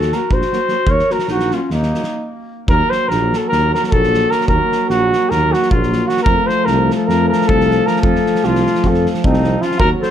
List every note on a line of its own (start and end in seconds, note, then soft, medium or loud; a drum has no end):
0.00 0.12 D#2 medium
0.00 0.15 F#4 medium
0.00 0.15 A4 medium
0.00 snare soft
0.12 0.19 F#3 medium
0.12 0.20 A#3 medium
0.12 0.32 F#4 medium
0.12 0.35 A#4 medium
0.12 snare soft
0.31 0.42 A#1 medium
0.31 0.90 F#4 medium
0.31 0.92 C5 loud
0.31 kick medium
0.42 snare soft
0.52 0.59 F#3 medium
0.52 0.60 A#3 medium
0.52 snare soft
0.68 0.77 F#3 medium
0.68 0.76 A#3 medium
0.68 snare soft
0.87 0.99 D#2 medium
0.87 1.13 A#4 medium
0.87 1.14 C#5 loud
0.87 kick loud
0.99 snare soft
1.10 1.18 F#3 medium
1.10 1.17 A#3 medium
1.10 1.29 F#4 medium
1.10 1.29 A#4 medium
1.10 snare soft
1.19 snare soft
1.28 1.51 A#1 medium
1.28 1.54 D#4 medium
1.28 1.55 F#4 loud
1.28 snare soft
1.39 snare soft
1.51 1.61 F#3 medium
1.51 1.59 A#3 medium
1.51 1.71 C#4 medium
1.51 1.71 F4 medium
1.51 snare soft
1.70 1.93 D#2 medium
1.70 2.30 A#3 medium
1.70 2.30 D#4 medium
1.70 snare soft
1.83 snare soft
1.93 2.02 F#3 soft
1.93 2.01 A#3 medium
1.93 snare soft
2.03 snare soft
2.68 2.81 D#2 loud
2.68 6.23 F#3 medium
2.68 6.28 A#3 medium
2.68 2.92 A#4 loud
2.68 kick loud
2.90 3.10 C5 loud
2.90 snare soft
3.08 3.32 A#1 loud
3.08 3.39 A#4 loud
3.08 snare soft
3.33 3.48 A4 medium
3.33 snare soft
3.49 3.74 D#2 medium
3.49 3.71 A#4 loud
3.49 snare soft
3.74 3.86 A#4 loud
3.74 snare soft
3.83 3.93 A#4 medium
3.83 snare soft
3.91 4.23 A#1 loud
3.91 4.32 A4 loud
3.91 kick medium
4.04 snare soft
4.14 snare soft
4.31 4.48 A#4 loud
4.31 snare soft
4.41 snare soft
4.48 4.60 D#2 loud
4.48 4.86 A#4 loud
4.48 kick medium
4.72 snare soft
4.89 5.12 A#1 medium
4.89 5.32 F#4 loud
4.89 snare soft
5.13 snare soft
5.30 5.53 D#2 loud
5.30 5.54 A#4 loud
5.30 snare soft
5.53 5.72 F#4 loud
5.53 snare soft
5.62 snare soft
5.71 6.01 A#1 loud
5.71 6.08 F4 medium
5.71 kick medium
5.83 snare soft
5.93 snare soft
6.07 6.22 F#4 loud
6.07 snare soft
6.17 snare soft
6.23 6.39 F2 medium
6.23 9.82 F3 medium
6.23 6.48 A#4 loud
6.23 kick loud
6.27 9.66 A3 loud
6.47 6.67 C5 loud
6.47 snare soft
6.65 6.90 C2 loud
6.65 6.94 A#4 loud
6.65 snare soft
6.91 snare soft
6.95 7.08 A4 medium
7.07 7.30 F2 medium
7.07 7.28 A#4 loud
7.07 snare soft
7.29 7.49 A#4 loud
7.29 snare soft
7.42 snare soft
7.47 7.79 C2 medium
7.47 7.88 A4 loud
7.47 kick medium
7.60 snare soft
7.71 snare soft
7.87 8.01 A#4 loud
7.87 snare soft
7.96 snare soft
8.02 8.16 F2 medium
8.02 8.47 A4 loud
8.02 kick loud
8.15 snare soft
8.26 snare soft
8.35 snare soft
8.44 8.67 C2 loud
8.44 8.89 F4 medium
8.44 snare soft
8.55 snare soft
8.66 snare soft
8.75 snare soft
8.83 9.07 F2 loud
8.83 kick medium
8.83 snare soft
8.88 9.09 A4 medium
8.94 snare soft
9.06 snare soft
9.14 snare soft
9.24 9.55 C2 loud
9.24 9.65 C4 medium
9.24 9.63 D#4 loud
9.24 kick medium
9.33 snare soft
9.44 snare soft
9.62 9.79 C#4 medium
9.62 9.79 F4 loud
9.62 snare soft
9.71 snare soft
9.79 9.93 D#2 medium
9.79 10.11 F#3 medium
9.79 10.11 A#3 medium
9.79 9.90 F#4 loud
9.79 9.90 A#4 loud
9.79 kick loud
10.01 10.11 A4 loud
10.01 10.11 C5 loud
10.01 snare soft